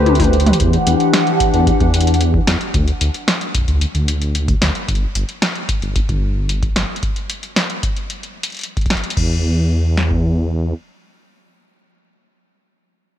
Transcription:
0.00 0.53 D2 medium
0.00 0.58 A3 medium
0.00 0.58 G4 medium
0.00 0.58 B4 medium
0.00 0.58 C5 medium
0.06 closed hi-hat soft
0.06 high tom medium
0.15 closed hi-hat soft
0.20 kick loud
0.20 open hi-hat medium
0.20 high tom medium
0.24 closed hi-hat medium
0.33 closed hi-hat soft
0.40 closed hi-hat medium
0.47 closed hi-hat medium
0.47 mid tom medium
0.53 closed hi-hat medium
0.60 0.78 E2 loud
0.60 2.72 E3 medium
0.60 2.72 D4 medium
0.60 2.72 G4 medium
0.60 2.72 F#5 medium
0.60 kick loud
0.60 closed hi-hat medium
0.73 closed hi-hat soft
0.87 0.96 E2 loud
0.87 closed hi-hat medium
1.00 closed hi-hat soft
1.13 snare loud
1.13 closed hi-hat medium
1.27 closed hi-hat soft
1.40 kick loud
1.40 closed hi-hat medium
1.54 1.71 E2 medium
1.54 closed hi-hat soft
1.67 kick loud
1.67 closed hi-hat medium
1.80 2.40 E2 loud
1.80 kick loud
1.80 closed hi-hat soft
1.94 closed hi-hat medium
2.01 closed hi-hat medium
2.07 closed hi-hat medium
2.14 closed hi-hat soft
2.21 closed hi-hat medium
2.34 kick loud
2.47 2.56 E2 loud
2.47 snare loud
2.47 closed hi-hat medium
2.61 closed hi-hat soft
2.74 2.92 D2 loud
2.74 kick loud
2.74 closed hi-hat medium
2.88 closed hi-hat soft
3.01 3.10 D2 loud
3.01 closed hi-hat medium
3.14 closed hi-hat soft
3.28 snare loud
3.28 closed hi-hat medium
3.41 closed hi-hat soft
3.55 kick loud
3.55 closed hi-hat medium
3.58 kick medium
3.61 kick medium
3.65 3.86 D2 medium
3.65 kick medium
3.68 kick soft
3.68 closed hi-hat soft
3.71 kick soft
3.75 kick soft
3.78 kick soft
3.78 closed hi-hat medium
3.95 4.54 D2 loud
3.95 closed hi-hat soft
4.08 closed hi-hat medium
4.22 closed hi-hat soft
4.35 closed hi-hat medium
4.48 kick loud
4.48 closed hi-hat soft
4.62 4.71 D2 loud
4.62 snare loud
4.62 closed hi-hat medium
4.75 closed hi-hat soft
4.88 5.06 G1 loud
4.88 kick loud
4.88 closed hi-hat medium
4.95 closed hi-hat soft
5.15 5.24 G1 medium
5.15 closed hi-hat medium
5.29 closed hi-hat soft
5.42 snare loud
5.42 closed hi-hat medium
5.55 closed hi-hat soft
5.69 kick loud
5.69 closed hi-hat medium
5.82 6.00 G1 medium
5.82 closed hi-hat soft
5.96 kick loud
5.96 closed hi-hat medium
6.09 6.69 G1 loud
6.09 kick loud
6.09 closed hi-hat soft
6.49 closed hi-hat medium
6.63 kick loud
6.63 closed hi-hat soft
6.76 6.85 G1 loud
6.76 snare loud
6.76 closed hi-hat medium
6.96 closed hi-hat soft
7.03 kick loud
7.03 closed hi-hat medium
7.16 closed hi-hat soft
7.30 closed hi-hat medium
7.43 closed hi-hat soft
7.56 snare loud
7.56 closed hi-hat medium
7.70 closed hi-hat soft
7.83 kick loud
7.83 closed hi-hat medium
7.97 closed hi-hat soft
8.10 closed hi-hat medium
8.23 closed hi-hat soft
8.43 closed hi-hat medium
8.50 closed hi-hat soft
8.52 closed hi-hat soft
8.55 closed hi-hat soft
8.57 closed hi-hat soft
8.59 closed hi-hat soft
8.61 closed hi-hat soft
8.63 closed hi-hat medium
8.77 kick loud
8.77 closed hi-hat soft
8.81 closed hi-hat soft
8.86 kick medium
8.86 closed hi-hat soft
8.90 snare loud
8.90 closed hi-hat soft
8.95 kick medium
8.95 closed hi-hat soft
9.04 closed hi-hat medium
9.10 closed hi-hat medium
9.17 10.74 E2 medium
9.17 kick loud
9.17 crash medium
9.97 snare medium
10.11 kick medium

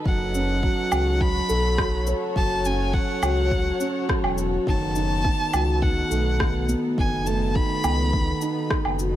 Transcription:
0.00 1.90 D#4 medium
0.00 9.16 A4 medium
0.00 0.96 B4 medium
0.05 0.69 F#1 loud
0.05 4.67 F#3 medium
0.05 0.33 F#3 medium
0.05 1.22 F#5 medium
0.05 kick loud
0.34 0.62 C#4 medium
0.34 shaker medium
0.63 0.90 F#3 loud
0.63 6.36 F#4 medium
0.63 kick loud
0.91 1.41 C#2 loud
0.91 1.19 F#4 medium
0.91 low woodblock medium
0.91 shaker medium
1.20 1.48 F#3 medium
1.20 2.07 B5 loud
1.20 kick loud
1.49 2.13 B1 medium
1.49 1.66 A4 loud
1.49 shaker medium
1.73 5.65 C#5 medium
1.78 2.06 F#3 medium
1.78 kick loud
1.78 cross-stick medium
2.07 2.35 C#5 medium
2.07 shaker medium
2.36 3.00 F#1 loud
2.36 2.63 F#3 medium
2.36 2.67 A5 loud
2.36 kick loud
2.65 2.92 C#4 medium
2.65 2.95 G#5 loud
2.65 shaker medium
2.93 3.21 F#3 medium
2.93 4.09 F#5 loud
2.93 kick loud
3.22 3.72 C#2 medium
3.22 3.50 F#4 loud
3.22 low woodblock medium
3.22 shaker medium
3.51 3.79 F#3 medium
3.51 kick loud
3.80 4.07 C#4 loud
3.80 shaker medium
4.09 4.36 F#3 medium
4.09 kick loud
4.09 cross-stick medium
4.23 4.58 E1 loud
4.23 low woodblock medium
4.38 4.66 F#4 medium
4.38 shaker medium
4.67 5.31 F#1 loud
4.67 4.94 D#3 loud
4.67 9.16 B3 medium
4.67 5.84 A5 loud
4.67 kick loud
4.95 5.12 D#4 loud
4.95 shaker medium
5.25 5.52 D#3 medium
5.25 9.16 D#4 medium
5.25 kick loud
5.53 6.03 C#2 loud
5.53 5.81 F#4 medium
5.53 low woodblock medium
5.53 shaker medium
5.82 6.10 D#3 medium
5.82 6.69 F#5 loud
5.82 kick loud
6.10 6.75 B1 medium
6.10 6.38 A3 medium
6.10 shaker medium
6.39 6.67 D#3 medium
6.39 kick loud
6.39 cross-stick medium
6.69 6.96 B3 loud
6.69 shaker medium
6.97 7.61 F#1 loud
6.97 7.25 D#3 medium
6.97 7.28 G#5 loud
6.97 kick loud
7.26 7.54 A3 loud
7.26 7.56 A5 medium
7.26 shaker medium
7.55 7.83 D#3 loud
7.55 8.70 B5 loud
7.55 kick loud
7.84 8.33 C#2 medium
7.84 8.12 B3 medium
7.84 low woodblock medium
7.84 shaker medium
8.13 8.40 D#3 loud
8.13 kick loud
8.41 8.58 D#4 loud
8.41 shaker medium
8.70 8.98 D#3 medium
8.70 kick loud
8.70 cross-stick medium
8.85 9.16 F#1 loud
8.85 low woodblock medium
8.99 9.16 F#4 medium
8.99 shaker medium

